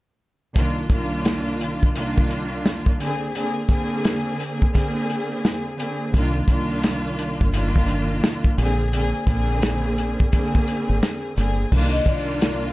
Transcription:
0.55 C2 D#3 A#3 D4 F4, kick, closed hi-hat
0.90 C2 D#3 A#3 D4 F4, kick, closed hi-hat
1.25 snare, closed hi-hat
1.61 closed hi-hat
1.83 kick
1.95 C2 D#3 A#3 D4 F4, closed hi-hat
2.18 kick
2.31 closed hi-hat
2.66 snare, closed hi-hat
2.86 kick
3.00 D3 A#3 C4 G#4, closed hi-hat
3.34 D3 A#3 C4 G#4, closed hi-hat
3.69 D3 A#3 C4 G#4, kick, closed hi-hat
4.04 snare, closed hi-hat
4.40 closed hi-hat
4.62 kick
4.73 D3 A#3 C4 G#4, kick, closed hi-hat
5.10 closed hi-hat
5.45 snare, closed hi-hat
5.79 D3 A#3 C4 G#4, closed hi-hat
6.13 C2 D#3 A#3 D4 F4, kick, closed hi-hat
6.48 C2 D#3 A#3 D4 F4, kick, closed hi-hat
6.83 snare, closed hi-hat
7.19 closed hi-hat
7.41 G1, kick
7.53 C2 D#3 A#3 D4 F4, closed hi-hat
7.76 kick
7.88 closed hi-hat
8.24 snare, closed hi-hat
8.44 kick
8.58 A#1 D3 A#3 C4 G#4, closed hi-hat
8.92 D3 A#3 C4 G#4, closed hi-hat
9.27 A#1 D3 A#3 C4 G#4, kick, closed hi-hat
9.62 snare, closed hi-hat
9.98 closed hi-hat
10.20 kick
10.31 D3 A#3 C4 G#4, kick, closed hi-hat
10.55 kick
10.68 closed hi-hat
10.89 G#1
11.03 snare, closed hi-hat
11.36 G1 D3 A#3 C4 G#4, closed hi-hat
11.72 C2 D#3 A#3 D4 F4, kick, crash
11.93 D#5
12.06 C2 D#3 A#3 D4 F4 D5, kick, closed hi-hat
12.42 snare, closed hi-hat

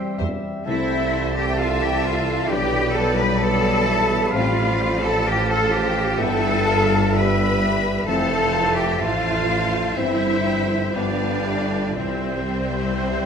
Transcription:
Already playing: E3 G3 C4 E4 G4 C5 E5 G5
0.18 E1 E2 G3 C4 G4 C5 E5
0.65 C2 C3 E3 A3 C4 E4 C5 E5 A5
1.37 G4 G5
1.59 F4 A4 E5 F5
1.82 G4 G5
2.05 F4 C5 F5
2.48 B1 B2 G3 B3 D4 G4 B4 D5 G5
2.93 G3 A4 A5
3.16 B4 B5
3.39 D3 G4 A4 D5 A5 B5
3.86 E3 D4 E5
4.31 A1 A2 F3 A3 C4 F4 D5 F5
4.36 F5
5.01 A4 A5
5.24 G4 A4 C5 F5 G5 A5
5.28 G5
5.49 A4 A5
5.72 F4 G4 G5
6.18 G1 G2 E3 A3 B3 A4 B4 E5 G5 A5
6.66 E3 G3 F5
7.12 G3 G4 B4 E5 B5
7.61 G3 E4
8.06 F1 F2 E3 A3 C4 A4 C5 F5 A5
8.53 A3
8.76 G4 G5
8.98 A1 E3 F4 C5 F5
9.94 G1 G2 E3 C4 E4 C5 E5 G5
10.44 F3 C4
10.94 G1 G2 F3 G3 B3 D4 B4 D5 F5 G5
11.45 A3 F4
11.96 C2 C3 E3 G3 C4 C5 E5 G5
12.50 G3
13.04 C5

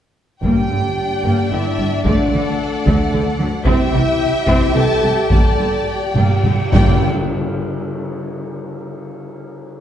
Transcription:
0.43 G1 G2 A#3 D4 G4 D5 G5, taiko
0.70 G1 G2 D3
1.25 G1 G2 A#3
1.51 G1 G2 D3 E4 E5
1.79 G1 G2 G3
2.05 D2 D3 A3 D4 D5 F#5, taiko
2.31 D2 D3 A3 A4
2.86 D2 D3 A3, taiko
3.13 D2 D3
3.39 D2 D3 F#3
3.66 C2 C3 C4 E4 G4 E5 G5, taiko
3.93 C2 C3 E3
4.47 C2 C3 C4, taiko
4.75 C2 C3 E3 A4 A5
5.02 C2 C3 G3
5.30 G1 G2 A#3 A4 D5 A5, taiko
5.59 G1 G2 D3
5.87 G4 G5
6.15 G1 G2 A#3, taiko mid
6.44 G1 G2 D3, taiko mid
6.72 G1 G2 A#3 G4 D5 G5, taiko, tam-tam

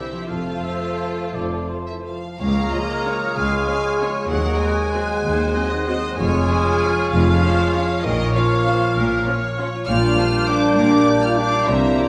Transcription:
Already playing: C3 E3 G3 A#3 D4 E4 G4 C5 E5
0.12 F3
0.17 A3
0.21 F4
0.25 F2 F3 F4 A4 F5
0.30 F1 A3 F4 C5
0.64 E5
1.34 F1 F2 D5
1.69 C5
1.87 E3 E5
2.05 F3 F5
2.39 C#2 C#3 G#3 A#3 G#4 C#5 F5 A#5 F6
2.49 C#4
2.58 G#3
2.65 F4
2.72 F3 C#4 F4 C#5 D#5
2.83 G#4
2.91 F5
3.00 C#6
3.05 F3 C#4 F4 C#5 F5
3.15 C#5
3.22 F4
3.29 G#3
3.35 C#2 C#3 G#3 F5 G#5
3.43 C#4
3.52 G#3
3.66 F3 C#4 F4 C#5 F5
3.77 G#4
3.84 F5
3.92 C#6
3.99 F3 C#4 F4 C#5 F5
4.07 C#5
4.15 F4
4.24 G#3
4.28 D#2 D#3 F#3 G#3 G#4 A#4 F#5 F#6
4.37 D#4
4.45 G#3
4.53 F#4
4.58 F#3 G#3 C4 F#4 C5 G#5
4.69 G#4
4.77 F#5
4.86 C6
4.93 F#3 C4 F#4 G#4 C5 F#5
5.09 F#4
5.16 G#3
5.23 D#2 D#3 C5
5.32 D#4
5.40 G#3
5.47 F#4
5.54 F#3 C4 F#4 C5 D#5
5.62 G#4
5.68 D#3 D#5 F#5
5.79 C6
5.85 D#3 F#3 C4 F#4 C5 D#5 F#5
5.95 C5
6.03 F#4
6.12 G#3
6.17 F1 F2 F3 G#3 F4 C#5 G#5 F6
6.27 G#3
6.35 F4
6.43 C#5
6.49 F3 C#4 F4 G#4
6.59 F5
6.67 C#6
6.75 G#5
6.82 F3 C#4 F4 C#6
6.91 G#4
6.99 C#5
7.06 F4
7.11 F1 F2 F3 F5
7.21 G#3
7.28 F4
7.36 C#5
7.43 F3 C#4 F4 G#4 C5
7.52 F5
7.59 C#6
7.68 G#5
7.74 F3 C#4 F4 C#5 C#6
7.83 G#4
7.91 C#5
7.99 F4 D#5
8.03 A#1 A#2 D#3 A#3 F4 A#4 C#5 F6
8.13 F3
8.21 A#3
8.28 F4
8.34 F3 C#4 F4 C#5 F5
8.43 A#4
8.52 F5
8.60 C#6
8.67 F3 C#4 F4 C5 F5
8.76 C#5
8.82 F4
8.91 A#3
8.96 A#1 A#2 A#4
9.04 F3
9.11 A#3
9.19 F4
9.27 F3 C#4 F4 C#5
9.35 A#4
9.43 F5
9.51 C#6
9.58 F3 C#4 F4 F5
9.67 C#5
9.75 F4
9.82 A#3
9.86 A#1 A#2 G3 A#3 D4 F4 D5 F6 G6
9.96 F3
10.02 G3
10.09 G4
10.17 D4 G4 C5 D5
10.25 G4
10.32 G5
10.41 D6
10.47 D4 G4 G5 D6
10.56 D5
10.63 G4
10.71 G3
10.76 A#1 A#2 D4 A#4 D6
10.93 G3
11.00 G4
11.07 D4 G4 D5
11.16 G4
11.22 F4 G5 F6
11.31 D6
11.37 D4 G4 F5 G5 D6
11.47 D5
11.54 G4
11.61 G3
11.67 C2 C3 E3 G3 A#3 E4 C5 E5 A#5 G6
11.75 C4
11.83 G3
11.91 G4
11.97 E4 G4 D5 E5

